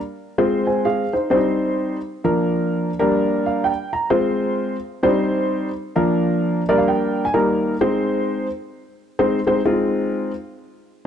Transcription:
0.38 1.03 G#3 medium
0.38 1.03 C4 medium
0.38 0.66 F4 medium
0.38 0.65 C5 medium
0.67 0.84 C5 soft
0.67 0.84 G#5 medium
0.85 1.12 G#4 medium
0.85 1.12 F5 medium
1.13 1.35 D#4 soft
1.13 1.30 C5 medium
1.30 1.96 G3 medium
1.30 1.96 C4 medium
1.30 1.38 D4 medium
1.30 1.96 C5 medium
1.36 1.99 D#4 medium
2.24 2.89 F3 medium
2.24 2.89 A#3 medium
2.24 2.89 D4 medium
2.24 2.89 A#4 medium
2.99 3.70 G3 medium
2.99 3.69 A#3 medium
2.99 3.69 D4 medium
2.99 3.69 A#4 medium
3.46 3.63 F5 medium
3.64 3.90 G5 medium
3.93 4.09 A#5 medium
4.10 4.75 G#3 medium
4.10 4.75 C4 medium
4.10 4.75 F4 medium
4.10 4.75 C5 medium
5.03 5.68 G3 medium
5.03 5.68 C4 medium
5.03 5.10 D4 medium
5.03 5.68 C5 medium
5.08 5.71 D#4 medium
5.96 6.61 F3 medium
5.96 6.61 A#3 medium
5.96 6.61 D4 medium
5.96 6.61 A#4 medium
6.69 7.23 G3 medium
6.69 7.23 A#3 medium
6.69 7.23 D4 medium
6.69 7.23 A#4 medium
6.69 6.78 D5 medium
6.78 6.87 F5 medium
6.88 7.23 G5 medium
7.25 7.34 G#5 medium
7.34 7.73 G3 medium
7.34 7.74 A#3 medium
7.34 7.73 D#4 medium
7.34 7.73 A#4 medium
7.34 7.78 A#5 medium
7.81 8.46 G#3 medium
7.81 8.46 C4 medium
7.81 8.46 D#4 medium
7.81 8.46 C5 medium
9.19 9.38 G#3 medium
9.19 9.38 C4 medium
9.19 9.38 D#4 medium
9.19 9.38 C5 medium
9.47 9.60 G#3 medium
9.47 9.60 C4 medium
9.47 9.60 D#4 medium
9.47 9.60 C5 medium
9.65 10.31 G#3 medium
9.65 10.31 C4 medium
9.65 10.31 D#4 medium
9.65 10.31 F4 medium

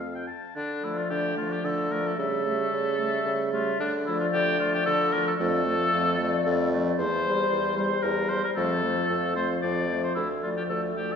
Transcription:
0.00 0.25 F2 soft
0.00 0.27 A3 soft
0.00 0.25 F4 medium
0.00 0.13 F5 medium
0.00 0.28 F5 medium
0.15 0.29 G5 soft
0.28 0.55 A5 soft
0.56 1.04 D3 medium
0.56 0.85 D4 medium
0.83 1.36 F3 soft
0.83 1.36 A3 soft
0.83 0.99 E4 medium
0.83 1.36 D5 soft
0.98 1.10 F4 medium
1.10 1.58 D3 medium
1.10 1.37 G4 medium
1.37 1.90 F3 soft
1.37 1.90 A3 soft
1.37 1.54 F4 medium
1.37 1.91 D5 soft
1.52 1.67 G4 medium
1.64 2.12 D3 medium
1.64 1.93 A4 medium
1.91 2.18 F3 soft
1.91 2.18 A3 medium
1.91 2.08 A#4 medium
1.91 2.18 D5 soft
2.07 2.19 A4 medium
2.18 2.66 C#3 medium
2.18 2.45 G3 soft
2.18 2.45 A3 soft
2.18 3.36 A4 medium
2.18 2.44 E5 soft
2.45 2.98 G3 soft
2.45 2.98 A3 medium
2.45 2.98 E5 medium
2.73 3.20 C#3 medium
2.98 3.52 G3 soft
2.98 3.52 A3 medium
2.98 3.51 E5 medium
3.26 3.74 C#3 medium
3.53 3.79 G3 soft
3.53 3.79 A3 medium
3.53 3.80 F4 medium
3.53 3.79 E5 medium
3.80 4.27 D3 medium
3.80 3.92 D4 medium
4.06 4.59 F3 medium
4.06 4.59 A3 medium
4.06 4.20 E4 medium
4.06 4.59 D5 medium
4.20 4.26 F4 medium
4.32 4.80 D3 medium
4.32 4.59 G4 loud
4.59 5.12 F3 medium
4.59 5.12 A3 medium
4.59 4.73 F4 medium
4.59 5.12 D5 medium
4.75 4.85 G4 medium
4.86 5.34 D3 medium
4.86 5.14 A4 loud
5.12 5.39 F3 medium
5.12 5.39 A3 medium
5.12 5.26 A#4 loud
5.12 5.39 D5 medium
5.27 5.33 A4 medium
5.39 5.87 F2 medium
5.39 5.66 F3 medium
5.39 5.65 A3 medium
5.39 6.69 A4 loud
5.39 5.66 D5 medium
5.66 6.18 F3 medium
5.66 6.18 A3 medium
5.66 6.19 D5 medium
5.93 6.40 F2 medium
6.19 6.71 F3 medium
6.19 6.71 A3 medium
6.19 6.71 D5 medium
6.46 6.92 F2 medium
6.72 6.98 F3 soft
6.72 6.98 A3 medium
6.72 6.98 D5 medium
6.98 7.45 E2 medium
6.98 7.73 C5 loud
7.25 7.76 G3 medium
7.25 7.77 C5 medium
7.51 7.98 E2 medium
7.76 8.29 G3 medium
7.76 8.04 C5 medium
7.76 8.30 C5 medium
8.03 8.43 E2 medium
8.03 8.31 A#4 loud
8.29 8.56 G3 medium
8.29 8.57 G3 medium
8.29 8.43 C5 loud
8.29 8.57 C5 medium
8.44 8.50 A#4 medium
8.56 9.04 F2 medium
8.56 8.83 F3 medium
8.56 8.83 A3 medium
8.56 9.35 A4 loud
8.56 8.83 C5 medium
8.83 9.35 F3 medium
8.83 9.35 A3 medium
8.83 9.36 C5 medium
9.10 9.57 F2 medium
9.36 9.88 F3 medium
9.36 9.89 A3 medium
9.36 9.48 C5 medium
9.36 9.89 C5 medium
9.62 10.10 F2 medium
9.62 10.02 D5 medium
9.89 10.16 F3 soft
9.89 10.16 A3 medium
9.89 10.16 C5 medium
10.04 10.15 C5 medium
10.15 10.63 D2 medium
10.15 10.28 E4 medium
10.43 10.95 F3 medium
10.43 10.96 A3 medium
10.43 10.49 F4 medium
10.43 10.95 D5 medium
10.57 10.63 G4 medium
10.70 11.16 D2 medium
10.70 10.82 A4 medium
10.96 11.16 F3 soft
10.96 11.16 A3 soft
10.96 11.14 G4 medium
10.96 11.16 D5 soft
11.12 11.16 A4 medium

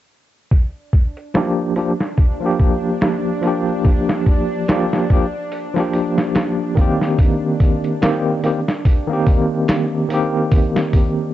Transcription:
0.51 11.34 D4 medium
0.51 kick loud
0.51 open hi-hat medium
0.93 kick medium
0.93 open hi-hat medium
1.17 closed hi-hat soft
1.34 1.72 F3 medium
1.34 1.73 A#3 medium
1.34 1.73 D4 medium
1.34 1.73 G4 medium
1.34 snare loud
1.34 open hi-hat medium
1.76 1.91 F3 medium
1.76 1.92 A#3 medium
1.76 1.92 D4 medium
1.76 1.93 G4 medium
1.76 open hi-hat medium
2.00 snare soft
2.18 kick loud
2.18 open hi-hat medium
2.40 3.38 F3 medium
2.40 3.39 A#3 medium
2.40 3.40 D4 medium
2.46 3.41 G4 medium
2.59 kick medium
2.59 open hi-hat medium
3.01 snare loud
3.01 open hi-hat medium
3.42 4.63 F3 medium
3.42 4.64 A#3 medium
3.42 4.65 D4 medium
3.42 open hi-hat medium
3.47 4.66 G4 medium
3.85 kick medium
3.85 open hi-hat medium
4.09 snare medium
4.26 kick medium
4.26 open hi-hat medium
4.68 5.06 F3 medium
4.68 5.06 A#3 medium
4.68 5.07 D4 medium
4.68 5.07 G4 medium
4.68 snare loud
4.68 open hi-hat medium
4.93 snare soft
5.10 5.25 F3 medium
5.10 5.25 A#3 medium
5.10 5.26 D4 medium
5.10 5.26 G4 medium
5.10 kick medium
5.10 open hi-hat medium
5.52 open hi-hat medium
5.74 6.72 F3 medium
5.74 6.73 A#3 medium
5.74 6.74 D4 medium
5.74 snare soft
5.80 6.75 G4 medium
5.93 open hi-hat medium
6.18 snare soft
6.35 snare loud
6.35 open hi-hat medium
6.75 7.97 D#3 medium
6.75 7.98 A#3 medium
6.75 7.99 C4 medium
6.75 kick medium
6.75 open hi-hat medium
6.81 8.00 G4 medium
7.01 snare soft
7.19 kick loud
7.19 open hi-hat medium
7.60 kick medium
7.60 open hi-hat medium
7.84 closed hi-hat soft
8.01 8.39 D#3 medium
8.01 8.40 A#3 medium
8.01 8.40 C4 medium
8.01 8.40 G4 medium
8.01 snare loud
8.01 open hi-hat medium
8.43 8.58 D#3 medium
8.43 8.59 A#3 medium
8.43 8.59 C4 medium
8.43 8.60 G4 medium
8.43 open hi-hat medium
8.68 snare soft
8.85 kick medium
8.85 open hi-hat medium
9.07 10.05 D#3 medium
9.07 10.06 A#3 medium
9.07 10.07 C4 medium
9.13 10.08 G4 medium
9.27 kick medium
9.27 open hi-hat medium
9.68 snare loud
9.68 open hi-hat medium
10.08 11.30 D#3 medium
10.08 11.31 A#3 medium
10.08 11.32 C4 medium
10.08 open hi-hat medium
10.14 11.33 G4 medium
10.52 kick loud
10.52 open hi-hat medium
10.76 snare medium
10.93 kick medium
10.93 open hi-hat medium

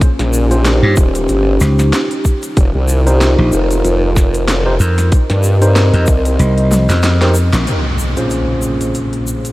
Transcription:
0.00 2.53 C#4 medium
0.00 2.54 D#4 medium
0.00 2.54 G4 medium
0.00 kick loud
0.00 closed hi-hat medium
0.00 shaker soft
0.19 0.80 A#1 loud
0.19 snare soft
0.19 closed hi-hat soft
0.33 shaker medium
0.51 2.06 C#4 medium
0.51 2.06 F4 medium
0.51 2.06 G4 medium
0.51 2.06 C5 medium
0.51 closed hi-hat soft
0.51 shaker soft
0.65 snare loud
0.65 snare soft
0.65 closed hi-hat medium
0.65 shaker soft
0.83 0.95 G2 loud
0.97 1.27 D#1 loud
0.97 kick loud
0.97 shaker medium
1.15 closed hi-hat medium
1.15 shaker medium
1.28 1.59 G1 loud
1.28 closed hi-hat medium
1.28 shaker soft
1.61 1.91 C#2 loud
1.61 snare soft
1.61 shaker medium
1.79 snare medium
1.79 closed hi-hat soft
1.79 shaker medium
1.93 snare loud
1.93 closed hi-hat medium
1.93 shaker soft
2.11 closed hi-hat soft
2.25 kick medium
2.25 shaker medium
2.43 closed hi-hat soft
2.43 shaker medium
2.57 2.72 F1 loud
2.57 5.10 D#4 medium
2.57 5.10 F4 medium
2.57 7.63 A#4 medium
2.57 kick loud
2.57 closed hi-hat medium
2.57 shaker soft
2.75 3.35 C2 loud
2.88 shaker medium
3.07 4.62 D#4 medium
3.07 4.62 G4 medium
3.07 4.62 A#4 medium
3.07 4.62 C5 medium
3.07 closed hi-hat soft
3.07 shaker medium
3.21 snare loud
3.21 closed hi-hat medium
3.21 shaker soft
3.38 3.50 A#1 loud
3.52 3.82 F1 loud
3.52 shaker medium
3.71 closed hi-hat medium
3.71 shaker medium
3.84 4.78 F1 loud
3.84 closed hi-hat medium
3.84 shaker soft
4.16 kick loud
4.16 snare medium
4.16 shaker loud
4.34 closed hi-hat medium
4.34 shaker soft
4.48 snare loud
4.48 closed hi-hat medium
4.48 shaker soft
4.66 4.74 D#4 medium
4.66 4.74 G4 medium
4.66 4.74 A#4 medium
4.66 4.74 C5 medium
4.80 5.10 F2 loud
4.80 shaker medium
4.98 snare soft
4.98 closed hi-hat medium
4.98 shaker soft
5.12 7.65 C4 medium
5.12 7.65 D#5 medium
5.12 kick loud
5.12 closed hi-hat medium
5.12 shaker soft
5.30 5.91 G2 medium
5.30 snare soft
5.30 closed hi-hat soft
5.43 shaker medium
5.62 7.17 D#4 medium
5.62 7.17 G4 medium
5.62 7.17 A#4 medium
5.62 7.17 C5 medium
5.62 closed hi-hat medium
5.62 shaker medium
5.76 snare loud
5.76 snare soft
5.76 closed hi-hat medium
5.76 shaker soft
5.93 6.05 F2 loud
5.93 closed hi-hat soft
6.07 6.37 C2 loud
6.07 kick loud
6.07 shaker medium
6.25 closed hi-hat medium
6.25 shaker soft
6.39 6.86 C2 loud
6.39 closed hi-hat medium
6.39 shaker soft
6.58 closed hi-hat soft
6.71 snare soft
6.71 high tom medium
6.71 shaker loud
6.89 7.50 F2 medium
6.89 snare medium
6.89 closed hi-hat medium
6.89 shaker soft
7.03 snare loud
7.03 closed hi-hat medium
7.03 shaker soft
7.21 7.34 D#4 medium
7.21 7.34 G4 medium
7.21 7.34 A#4 medium
7.21 7.34 C5 medium
7.21 snare medium
7.21 closed hi-hat soft
7.34 shaker medium
7.53 7.65 A#1 medium
7.53 snare medium
7.53 closed hi-hat medium
7.53 shaker medium
7.66 9.52 A#3 medium
7.66 9.52 C#4 medium
7.66 9.52 G#4 medium
7.66 closed hi-hat medium
7.66 impact medium
7.66 shaker soft
7.99 shaker medium
8.17 9.52 A#2 medium
8.17 9.52 C#4 medium
8.17 9.52 F4 medium
8.17 9.52 G#4 medium
8.17 9.52 C5 medium
8.17 closed hi-hat soft
8.17 shaker soft
8.30 closed hi-hat medium
8.30 shaker soft
8.62 shaker medium
8.81 closed hi-hat soft
8.81 shaker soft
8.94 closed hi-hat medium
8.94 shaker soft
9.13 closed hi-hat soft
9.27 shaker medium
9.45 closed hi-hat medium
9.45 shaker soft

